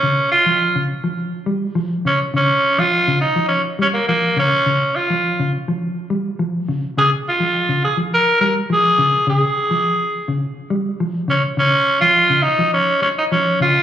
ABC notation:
X:1
M:4/4
L:1/16
Q:1/4=104
K:Bbdor
V:1 name="Tenor saxophone"
D2 F4 z8 D2 | D3 F3 E2 D2 D B, B,2 D2- | D2 F4 z8 z2 | A2 F4 A2 B2 B2 A4 |
A8 z6 D2 | D3 F3 E2 D2 D E D2 F2 |]
V:2 name="Clean electric guitar" clef=bass
D,2 z F,2 D,2 F,2 z G,2 F,2 D,2 | D,2 z F,2 D,2 F,2 z G,2 F,2 D,2 | D,2 z F,2 D,2 F,2 z G,2 F,2 D,2 | D,2 z F,2 D,2 F,2 z G,2 F,2 D,2 |
D,2 z F,2 z2 D,2 z G,2 F,2 D,2 | D,2 z F,2 D,2 F,2 z3 F,2 D,2 |]